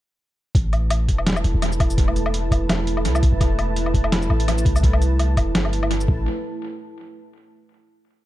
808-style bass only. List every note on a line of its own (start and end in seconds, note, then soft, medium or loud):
0.55 1.10 A1 loud
1.08 1.43 E1 medium
1.44 1.53 E1 medium
1.54 2.50 E1 loud
2.51 3.06 E1 loud
3.05 3.31 C2 medium
3.33 3.93 E1 loud
3.94 4.29 E1 loud
4.30 4.65 A1 medium
4.65 5.38 C2 medium
5.37 5.57 E1 loud
5.55 6.08 G1 loud
6.08 6.25 A1 loud